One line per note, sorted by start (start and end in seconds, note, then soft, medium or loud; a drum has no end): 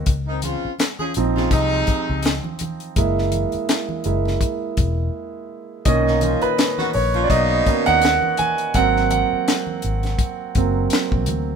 0.06 0.55 C#2 medium
0.06 kick loud
0.06 closed hi-hat medium
0.06 muted conga soft
0.27 0.40 D#3 medium
0.27 0.40 C4 medium
0.27 0.40 D#4 medium
0.42 0.72 C#3 medium
0.42 0.72 C4 medium
0.42 0.72 F4 medium
0.42 closed hi-hat medium
0.42 muted conga soft
0.42 high conga medium
0.65 muted fingered electric bass stroke soft
0.78 snare loud
0.78 clap medium
0.78 closed hi-hat medium
0.78 muted conga soft
0.99 1.12 F3 medium
0.99 1.12 C#4 medium
0.99 1.12 G#4 medium
0.99 high conga medium
1.14 1.47 A#1 medium
1.14 2.93 F3 medium
1.14 2.93 C4 medium
1.14 2.93 D#4 medium
1.14 closed hi-hat medium
1.36 1.48 C#3 medium
1.36 1.48 C4 medium
1.36 1.48 F4 medium
1.36 snare soft
1.36 low conga medium
1.51 1.82 C2 loud
1.51 2.40 C3 medium
1.51 2.40 G#3 medium
1.51 2.40 D#4 loud
1.51 kick medium
1.51 closed hi-hat medium
1.51 muted conga soft
1.87 kick medium
1.87 closed hi-hat medium
2.09 2.39 C#2 medium
2.23 snare loud
2.23 clap medium
2.23 closed hi-hat medium
2.44 high conga medium
2.59 closed hi-hat medium
2.59 muted conga soft
2.59 high conga medium
2.59 low conga medium
2.80 closed hi-hat soft
2.96 3.44 F#1 loud
2.96 4.04 G#3 medium
2.96 4.04 A#3 medium
2.96 4.05 E4 medium
2.96 kick loud
2.96 closed hi-hat medium
3.18 snare soft
3.32 closed hi-hat medium
3.32 muted conga soft
3.32 high conga medium
3.52 muted fingered electric bass stroke soft
3.52 closed hi-hat soft
3.69 snare loud
3.69 clap medium
3.69 closed hi-hat medium
3.89 high conga medium
4.04 4.36 F#1 medium
4.04 4.37 G#3 soft
4.04 4.38 A#3 soft
4.04 4.38 E4 medium
4.04 closed hi-hat medium
4.25 snare soft
4.25 low conga medium
4.41 kick medium
4.41 closed hi-hat medium
4.77 5.08 E1 medium
4.77 kick medium
4.77 closed hi-hat medium
5.85 6.34 B1 loud
5.85 6.90 A#2 medium
5.85 6.90 D#3 medium
5.85 6.91 C#4 medium
5.85 6.44 D#5 medium
5.85 kick loud
5.85 closed hi-hat medium
6.06 6.18 B2 medium
6.06 6.19 A#3 medium
6.06 6.18 D#4 medium
6.06 snare soft
6.21 6.50 F3 medium
6.21 6.50 C#4 medium
6.21 6.50 F4 medium
6.21 closed hi-hat medium
6.21 high conga medium
6.42 6.96 B4 medium
6.42 muted fingered electric bass stroke soft
6.42 closed hi-hat soft
6.57 snare loud
6.57 clap medium
6.57 closed hi-hat medium
6.57 muted conga soft
6.78 6.91 D#3 medium
6.78 6.91 B3 medium
6.78 6.90 F#4 medium
6.78 snare soft
6.78 high conga medium
6.93 7.25 A#1 medium
6.93 7.01 C#5 medium
6.93 open hi-hat soft
6.93 muted conga soft
7.14 7.27 F3 medium
7.14 7.27 C#4 medium
7.14 7.27 F4 medium
7.14 closed hi-hat soft
7.14 low conga medium
7.24 7.30 D5 medium
7.30 7.61 B1 medium
7.30 8.18 B2 medium
7.30 8.19 A#3 medium
7.30 8.18 D#4 loud
7.30 7.88 D#5 loud
7.30 kick medium
7.30 closed hi-hat medium
7.66 7.99 D#3 soft
7.66 7.99 A#3 soft
7.66 7.99 C#4 medium
7.66 kick medium
7.66 closed hi-hat medium
7.86 8.17 D#2 medium
7.86 8.40 F#5 loud
7.86 closed hi-hat soft
8.02 snare loud
8.02 clap medium
8.02 closed hi-hat medium
8.02 muted conga soft
8.22 high conga medium
8.37 8.76 G#5 loud
8.37 closed hi-hat medium
8.37 muted conga soft
8.37 high conga medium
8.37 low conga medium
8.58 closed hi-hat soft
8.74 9.23 G#1 loud
8.74 10.55 F#3 medium
8.74 10.55 A#3 medium
8.74 10.56 C4 medium
8.74 9.09 F#5 loud
8.74 kick loud
8.74 closed hi-hat medium
8.97 snare soft
9.11 11.24 F#5 medium
9.11 closed hi-hat medium
9.11 muted conga soft
9.11 high conga medium
9.33 muted fingered electric bass stroke soft
9.48 snare loud
9.48 clap medium
9.48 closed hi-hat medium
9.67 high conga medium
9.82 10.14 G#1 medium
9.82 closed hi-hat medium
9.82 muted conga soft
10.03 snare soft
10.03 closed hi-hat soft
10.03 low conga medium
10.19 kick medium
10.19 closed hi-hat medium
10.55 10.86 F#1 loud
10.55 10.88 F#3 soft
10.55 10.88 A#3 soft
10.55 10.89 C4 medium
10.55 kick medium
10.55 closed hi-hat medium
10.55 muted conga soft
10.90 snare loud
10.90 clap medium
10.90 closed hi-hat medium
10.90 muted conga soft
11.12 11.29 A#1 medium
11.12 kick medium
11.12 high conga medium
11.26 11.56 D2 medium
11.26 closed hi-hat medium
11.26 muted conga soft
11.26 high conga medium
11.26 low conga medium